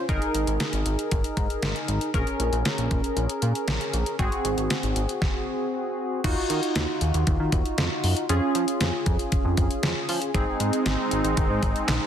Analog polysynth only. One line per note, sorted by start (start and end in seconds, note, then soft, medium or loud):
0.09 2.10 D#4 medium
0.09 2.10 G#4 medium
0.09 2.10 A#4 medium
2.14 4.15 C#4 medium
2.14 4.15 G#4 medium
2.14 4.15 A#4 medium
4.19 6.20 C4 medium
4.19 6.20 F#4 medium
4.19 6.20 G#4 medium
6.24 8.25 D#4 medium
6.24 8.25 F4 medium
6.24 8.25 F#4 medium
8.29 10.31 C#4 medium
8.29 10.31 F4 medium
8.29 10.31 G#4 medium
10.34 12.07 C4 medium
10.34 12.07 D#4 medium
10.34 12.07 G#4 medium